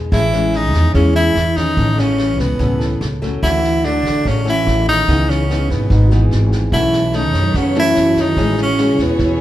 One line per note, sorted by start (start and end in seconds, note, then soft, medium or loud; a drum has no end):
0.00 0.11 E2 medium
0.00 0.14 B4 medium
0.12 0.74 A1 loud
0.12 0.92 A2 medium
0.12 0.53 E3 medium
0.12 0.24 G#3 medium
0.12 0.24 C#4 medium
0.12 0.58 E4 loud
0.12 0.24 E4 medium
0.12 1.50 G#4 soft
0.12 kick medium
0.12 cross-stick medium
0.12 snare soft
0.32 0.91 G#3 medium
0.32 0.91 C#4 medium
0.32 snare soft
0.52 0.91 D#3 medium
0.52 snare soft
0.56 0.94 D#4 loud
0.73 0.93 E2 medium
0.73 kick soft
0.73 cross-stick medium
0.73 snare soft
0.92 1.33 E2 medium
0.92 1.11 C#3 medium
0.92 1.75 E3 medium
0.92 1.36 G#3 medium
0.92 1.14 C#4 medium
0.92 1.36 C#4 medium
0.92 1.36 E4 medium
0.92 kick medium
0.92 snare soft
1.12 1.55 E3 medium
1.12 1.58 E4 loud
1.12 snare soft
1.35 1.74 E2 medium
1.35 cross-stick medium
1.35 snare soft
1.54 1.98 D#3 medium
1.54 1.95 B3 medium
1.54 1.95 C#4 medium
1.54 2.01 D#4 loud
1.54 kick soft
1.54 snare soft
1.77 2.39 A1 loud
1.77 2.58 A2 medium
1.77 kick medium
1.77 snare soft
1.96 2.39 C#3 medium
1.96 2.57 E3 medium
1.96 2.57 B3 medium
1.96 2.57 C#4 medium
1.96 2.42 C#4 medium
1.96 snare soft
2.18 cross-stick medium
2.18 snare soft
2.38 2.58 C#2 medium
2.38 3.00 B2 medium
2.38 3.02 B3 medium
2.38 kick soft
2.38 snare soft
2.59 2.98 C#2 loud
2.59 3.40 A2 medium
2.59 3.01 E3 medium
2.59 3.01 B3 medium
2.59 3.01 C#4 medium
2.59 kick medium
2.59 snare soft
2.79 3.58 A4 soft
2.79 snare soft
3.01 3.39 C#2 medium
3.01 cross-stick medium
3.01 snare soft
3.22 3.60 F#3 medium
3.22 3.60 A3 medium
3.22 3.60 C#4 medium
3.22 kick soft
3.22 snare soft
3.43 4.05 D2 loud
3.43 4.23 D3 medium
3.43 3.86 E3 medium
3.43 3.86 E4 loud
3.43 kick medium
3.43 cross-stick medium
3.43 snare soft
3.63 snare soft
3.83 4.27 D3 medium
3.83 4.42 F#3 medium
3.83 4.43 A3 medium
3.83 4.29 D4 loud
3.83 snare soft
4.05 4.24 A1 medium
4.05 kick soft
4.05 cross-stick medium
4.05 snare soft
4.25 4.64 A1 medium
4.25 5.06 A2 medium
4.25 4.45 C#3 medium
4.25 4.47 C#4 medium
4.25 kick medium
4.25 snare soft
4.45 4.84 E3 medium
4.45 5.04 F#3 medium
4.45 5.04 A3 medium
4.45 5.04 C#4 medium
4.45 snare soft
4.49 4.86 E4 loud
4.67 5.05 A1 medium
4.67 cross-stick medium
4.67 snare soft
4.87 5.30 D#3 medium
4.87 5.31 D#4 loud
4.87 kick soft
4.87 snare soft
5.08 5.71 C#2 loud
5.08 5.88 C#3 medium
5.08 5.46 E3 medium
5.08 5.46 B3 medium
5.08 5.46 D#4 medium
5.08 kick medium
5.08 snare soft
5.29 5.72 C#3 medium
5.29 5.72 C#4 medium
5.29 snare soft
5.49 5.90 E3 soft
5.49 5.91 B3 medium
5.49 5.91 D#4 medium
5.49 6.20 G#4 soft
5.49 cross-stick medium
5.49 snare soft
5.70 5.89 G#1 medium
5.70 6.32 B2 medium
5.70 6.32 B3 medium
5.70 kick soft
5.70 snare soft
5.90 6.28 G#1 medium
5.90 6.71 G#2 medium
5.90 6.90 D#4 medium
5.90 kick medium
5.90 snare soft
6.07 7.03 F#4 soft
6.07 snare soft
6.11 6.70 E3 medium
6.11 6.70 B3 medium
6.11 6.70 D#4 medium
6.22 7.15 G#4 soft
6.31 6.70 G#1 medium
6.31 cross-stick medium
6.31 snare soft
6.52 kick soft
6.52 snare soft
6.72 7.34 B1 loud
6.72 7.53 B2 medium
6.72 7.16 E3 medium
6.72 6.99 A3 medium
6.72 9.41 B3 medium
6.72 6.99 C#4 medium
6.72 7.17 E4 loud
6.72 7.00 E4 medium
6.72 9.41 F#4 medium
6.72 8.37 B4 medium
6.72 8.35 C#5 medium
6.72 kick medium
6.72 cross-stick medium
6.72 snare soft
6.93 snare soft
7.12 7.58 D#3 medium
7.12 7.73 A3 medium
7.12 7.73 C#4 soft
7.12 7.58 D#4 loud
7.12 snare soft
7.33 7.53 F#2 medium
7.33 kick soft
7.33 cross-stick medium
7.33 snare soft
7.54 7.93 F#2 medium
7.54 7.75 C#3 medium
7.54 8.36 F#3 medium
7.54 7.76 C#4 medium
7.54 kick medium
7.54 snare soft
7.74 8.19 E3 medium
7.74 8.34 A3 medium
7.74 8.55 C#4 medium
7.74 8.35 C#4 medium
7.74 8.35 E4 medium
7.74 snare soft
7.80 8.23 E4 loud
7.92 8.68 B3 soft
7.92 cross-stick medium
7.92 snare soft
7.96 8.35 F#2 medium
8.07 8.80 F#4 soft
8.16 8.59 D#3 medium
8.16 kick soft
8.16 snare soft
8.21 8.60 D#4 medium
8.37 8.99 A1 loud
8.37 9.19 A2 medium
8.37 8.64 G#3 medium
8.37 8.65 C#4 medium
8.37 8.65 E4 medium
8.37 9.41 G#4 medium
8.37 9.41 C#5 medium
8.37 kick medium
8.37 snare soft
8.57 9.03 C#3 medium
8.57 snare soft
8.62 9.04 C#4 medium
8.77 9.38 G#3 medium
8.77 9.38 C#4 medium
8.77 9.38 E4 medium
8.77 cross-stick medium
8.77 snare soft
8.99 9.18 E2 medium
8.99 9.41 B2 medium
8.99 9.41 B3 medium
8.99 kick soft
8.99 snare soft
9.18 9.41 E2 medium
9.18 9.41 E3 medium
9.18 9.41 E4 soft
9.18 kick medium
9.18 snare soft
9.34 9.41 G#4 soft